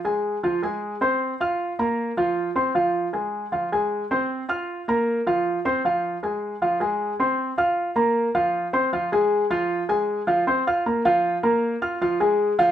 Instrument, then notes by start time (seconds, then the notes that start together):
grand piano
0.05 G#3 G#4 G#5
0.43 F3 F4 F5
0.63 G#3 G#4 G#5
1.01 C4 C5 C6
1.40 F4 F5 F6
1.79 A#3 A#4 A#5
2.17 F3 F4 F5
2.56 C4 C5 C6
2.75 F3 F4 F5
3.13 G#3 G#4 G#5
3.52 F3 F4 F5
3.72 G#3 G#4 G#5
4.11 C4 C5 C6
4.49 F4 F5 F6
4.88 A#3 A#4 A#5
5.27 F3 F4 F5
5.65 C4 C5 C6
5.85 F3 F4 F5
6.23 G#3 G#4 G#5
6.62 F3 F4 F5
6.80 G#3 G#4 G#5
7.20 C4 C5 C6
7.58 F4 F5 F6
7.96 A#3 A#4 A#5
8.35 F3 F4 F5
8.73 C4 C5 C6
8.93 F3 F4 F5
9.12 G#3 G#4 G#5
9.50 F3 F4 F5
9.89 G#3 G#4 G#5
10.27 F3 F4 F5
10.47 C4 C5 C6
10.67 F4 F5 F6
10.86 A#3 A#4 A#5
11.05 F3 F4 F5
11.43 A#3 A#4 A#5
11.82 F4 F5 F6
12.01 F3 F4 F5
12.20 G#3 G#4 G#5
12.59 F3 F4 F5